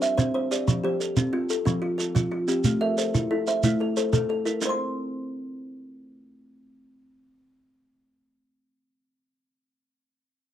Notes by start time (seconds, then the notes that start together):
Already playing: C5
0.02 C5 E5, shekere
0.17 C4 C5, shekere
0.34 C5
0.51 G4 C5 D5, shekere
0.68 F3, shekere
0.84 F3 G4 C5
1.00 A4, shekere
1.17 C4, shekere
1.33 C4 F4
1.50 A4, shekere
1.65 F3 C4, shekere
1.82 F4
1.98 F4 A4, shekere
2.15 F3 F4, shekere
2.31 F4
2.48 C4 F4 G4, shekere
2.64 A3, shekere
2.81 A4 A#4 E5
2.98 A4 C5, shekere
3.14 E4, shekere
3.31 E4 A4
3.47 C5 E5, shekere
3.63 A3 E4, shekere
3.80 A4
3.97 A4 C5, shekere
4.13 A3 A4, shekere
4.29 A4
4.45 E4 A4 A#4, shekere
4.61 C4 C5, shekere
4.66 C5 C6
4.70 C6